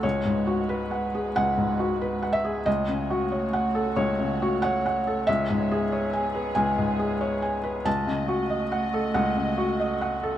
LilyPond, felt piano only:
\new Staff \with { instrumentName = "Felt piano" } { \time 4/4 \key cis \minor \tempo 4 = 93 << { cis''2 fis''4. e''8 | dis''2 cis''4 fis''4 | e''2 gis''2 | a''2 fis''4 r4 | } \\ { \tuplet 3/2 { cis,8 gis,8 fis'8 b'8 fis''8 gis'8 cis,8 gis,8 fis'8 b'8 fis''8 gis'8 } | \tuplet 3/2 { cis,8 cis8 fis'8 cis''8 fis''8 a'8 cis,8 cis8 fis'8 cis''8 fis''8 a'8 } | \tuplet 3/2 { cis,8 gis,8 gis'8 cis''8 gis''8 b'8 cis,8 gis,8 gis'8 cis''8 gis''8 b'8 } | \tuplet 3/2 { cis,8 cis8 fis'8 dis''8 fis''8 a'8 cis,8 cis8 fis'8 dis''8 fis''8 a'8 } | } >> }